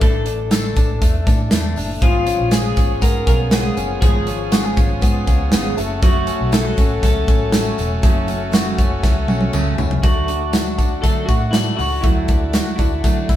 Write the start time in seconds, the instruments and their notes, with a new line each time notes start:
Already playing: clean electric guitar A3 D4 A4
0.01 fingered electric bass A1, steel-string acoustic guitar A2 D3 E3 A3 D4 A4, kick, closed hi-hat
0.26 steel-string acoustic guitar E3 A3 D4 A4, closed hi-hat
0.51 steel-string acoustic guitar A2 D3 E3 A3 D4 A4, snare, closed hi-hat, tambourine
0.76 fingered electric bass A1, steel-string acoustic guitar E3 A3 D4 A4, kick, closed hi-hat, tambourine
1.02 fingered electric bass E2, steel-string acoustic guitar E3 A3 D4 A4, kick, closed hi-hat, tambourine
1.27 fingered electric bass A2, steel-string acoustic guitar E3 A3 D4 A4, kick, closed hi-hat, tambourine
1.51 fingered electric bass E2, steel-string acoustic guitar A2 D3 E3 A3 D4 A4, snare, closed hi-hat, tambourine
1.76 fingered electric bass F#1, steel-string acoustic guitar E3 A3 D4 A4, open hi-hat, tambourine
2.01 fingered electric bass G#1, steel-string acoustic guitar G#2 C#3 G#3 B3 F4 G#4, clean electric guitar F3, transistor combo organ B3 C#4 F4 G#4, kick, closed hi-hat
2.27 steel-string acoustic guitar G#3 B3 F4 G#4, clean electric guitar C#4, closed hi-hat, tambourine
2.40 fingered electric bass A#1
2.51 steel-string acoustic guitar G#2 C#3 G#3 B3 F4 G#4, snare, closed hi-hat, tambourine
2.76 fingered electric bass G#1, steel-string acoustic guitar G#3 B3 F4 G#4, clean electric guitar C#4, kick, closed hi-hat, tambourine
3.01 fingered electric bass G#2, steel-string acoustic guitar G#3 B3 F4 G#4, clean electric guitar A#4, kick, closed hi-hat, tambourine
3.27 fingered electric bass B1, steel-string acoustic guitar G#3 B3 F4 G#4, clean electric guitar C#4 A#4, kick, closed hi-hat, tambourine
3.51 steel-string acoustic guitar G#2 C#3 G#3 B3 F4 G#4, snare, closed hi-hat, tambourine
3.77 fingered electric bass F#1, steel-string acoustic guitar G#3 B3 F4 G#4, clean electric guitar C#4, closed hi-hat, tambourine
4.02 fingered electric bass G#1, steel-string acoustic guitar G#2 C#3 G#3 B3 F4 G#4, clean electric guitar F3, kick, closed hi-hat
4.27 steel-string acoustic guitar G#3 B3 F4 G#4, clean electric guitar C#4, closed hi-hat, tambourine
4.52 steel-string acoustic guitar G#2 C#3 G#3 B3 F4 G#4, clean electric guitar F#4, snare, closed hi-hat, tambourine
4.65 clean electric guitar G#4
4.77 fingered electric bass G#1, steel-string acoustic guitar G#3 B3 F4 G#4, clean electric guitar C#4, kick, closed hi-hat, tambourine
5.01 fingered electric bass G#2, steel-string acoustic guitar G#3 B3 F4 G#4, kick, closed hi-hat, tambourine
5.26 fingered electric bass C#2, steel-string acoustic guitar G#3 B3 F4 G#4, clean electric guitar C#4, kick, closed hi-hat, tambourine
5.52 fingered electric bass G#1, steel-string acoustic guitar G#2 C#3 G#3 B3 F4 G#4, snare, closed hi-hat, tambourine
5.76 fingered electric bass F#1, steel-string acoustic guitar F#3 A3 C#4 F#4, transistor combo organ A3 C#4 F#4 A4, closed hi-hat, tambourine
6.02 steel-string acoustic guitar F#2 C#3 F#3 A3 C#4 F#4, kick, closed hi-hat, tambourine
6.26 steel-string acoustic guitar F#3 A3 C#4 F#4, closed hi-hat, tambourine
6.41 fingered electric bass B1
6.52 steel-string acoustic guitar F#2 C#3 F#3 A3 C#4 F#4, clean electric guitar E4 A4, snare, closed hi-hat, tambourine
6.65 clean electric guitar F#4
6.77 fingered electric bass A1, steel-string acoustic guitar F#3 A3 C#4 F#4, kick, closed hi-hat, tambourine
7.02 fingered electric bass C#2, steel-string acoustic guitar F#3 A3 C#4 F#4, clean electric guitar A4, kick, closed hi-hat, tambourine
7.26 fingered electric bass A1, steel-string acoustic guitar F#3 A3 C#4 F#4, kick, closed hi-hat, tambourine
7.52 steel-string acoustic guitar F#2 C#3 F#3 A3 C#4 F#4, snare, closed hi-hat, tambourine
7.78 fingered electric bass E1, steel-string acoustic guitar F#3 A3 C#4 F#4, closed hi-hat, tambourine
8.02 fingered electric bass F#1, steel-string acoustic guitar F#2 C#3 F#3 A3 C#4 F#4, kick, closed hi-hat
8.27 steel-string acoustic guitar F#3 A3 C#4 F#4, closed hi-hat, tambourine
8.51 steel-string acoustic guitar F#2 C#3 F#3 A3 C#4 F#4, snare, closed hi-hat, tambourine
8.77 fingered electric bass F#1, steel-string acoustic guitar F#3 A3 C#4 F#4, kick, closed hi-hat, tambourine
9.03 fingered electric bass C#2, steel-string acoustic guitar F#3 A3 C#4 F#4, kick, snare, tambourine
9.28 fingered electric bass B1, steel-string acoustic guitar F#3 A3 C#4 F#4, high tom, tambourine
9.41 high tom
9.53 fingered electric bass C#2, steel-string acoustic guitar F#2 C#3 F#3 A3 C#4 F#4, mid tom, tambourine
9.78 fingered electric bass C#2, steel-string acoustic guitar F#3 A3 C#4 F#4, floor tom, tambourine
9.91 floor tom
10.03 fingered electric bass D2, steel-string acoustic guitar D3 F#3 A3 D4 F#4, transistor combo organ D4 F#4 A4, kick, closed hi-hat, tambourine
10.28 steel-string acoustic guitar A3 D4 F#4, closed hi-hat
10.53 steel-string acoustic guitar F#3 A3 D4 F#4, snare, closed hi-hat, tambourine
10.78 steel-string acoustic guitar A3 D4 F#4, kick, closed hi-hat, tambourine
11.02 steel-string acoustic guitar D3 F#3 A3 D4 F#4, fingered electric bass D3, clean electric guitar A4, kick, closed hi-hat, tambourine
11.28 fingered electric bass A2, steel-string acoustic guitar A3 D4 F#4, kick, closed hi-hat, tambourine
11.51 steel-string acoustic guitar F#3 A3, clean electric guitar E4, snare, closed hi-hat, tambourine
11.55 steel-string acoustic guitar D4 F#4
11.78 fingered electric bass C#2, steel-string acoustic guitar A3 D4 F#4, open hi-hat, tambourine
12.01 fingered electric bass D2, steel-string acoustic guitar D3 F#3 A3 D4 F#4, clean electric guitar E4, kick, closed hi-hat
12.28 fingered electric bass D2, steel-string acoustic guitar A3 D4 F#4, kick, closed hi-hat, tambourine
12.53 steel-string acoustic guitar F#3 A3 D4 F#4, snare, closed hi-hat, tambourine
12.76 fingered electric bass D2, steel-string acoustic guitar D4 F#4, clean electric guitar E4, kick, closed hi-hat, tambourine
12.81 steel-string acoustic guitar A3
13.04 steel-string acoustic guitar D3 F#3 A3 D4 F#4, fingered electric bass D3, kick, closed hi-hat, tambourine
13.28 fingered electric bass D2, steel-string acoustic guitar A3 D4 F#4, clean electric guitar E4, kick, closed hi-hat, tambourine